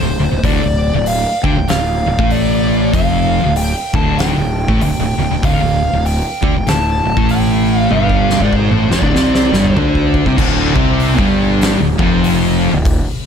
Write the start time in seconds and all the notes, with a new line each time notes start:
Already playing: C5
0.00 D1 D2
0.19 D1 D2
0.31 D1 D2
0.39 C5
0.43 D1 D2 D3 D5, kick, open hi-hat
0.63 D1 D2
0.94 D1 D2
1.06 F5, open hi-hat
1.44 D2 D3 D4 G5, kick
1.57 D1 D2
1.68 D1 D2 F5, snare, open hi-hat
2.06 D1 D2
2.19 A1 A2 A3, kick
2.31 D5, open hi-hat
2.93 F1 F2 F3 F5, kick, open hi-hat
3.44 D1 D2
3.56 G5, open hi-hat
3.93 D1 D2 D3 A5, kick
4.18 G5, snare, open hi-hat
4.37 D1 D2
4.68 A1 A2 A3, kick
4.81 D1 D2 G5, open hi-hat
4.99 D1 D2
5.18 D1 D2
5.31 D1 D2
5.42 D1 D2 D3 F5, kick, open hi-hat
5.61 D1 D2
5.93 D1 D2
6.05 G5, open hi-hat
6.42 D2 D3 D4, kick
6.54 D1 D2
6.67 D1 D2 A5, snare, open hi-hat
7.05 D1 D2
7.17 A1 A2 A3, kick
7.29 G5, open hi-hat
7.79 F5
7.91 G1 G2 G3 F5, high tom
8.09 kick
8.30 snare
8.40 G#1 G#2 G#3 D5, kick
8.53 C5, kick
8.71 A1 A2 A3, mid tom
8.90 F1 F2 F3 D5, snare
9.02 D1 D2 D3, kick
9.14 C2 C3 C4, snare
9.35 snare
9.52 G1 G2 G3, snare
9.64 mid tom
9.74 D2 D3 D4 C5, floor tom
9.95 kick
10.14 kick
10.25 C2 C3 C4, kick
10.38 D1 D2 D3, kick, crash
10.75 C2 C3 C4, kick
11.00 open hi-hat
11.18 G1 G2 G3, kick
11.61 snare, open hi-hat
11.80 D1 D2
11.99 F1 F2 F3, kick
12.24 open hi-hat
12.73 D1 D2
12.85 kick, open hi-hat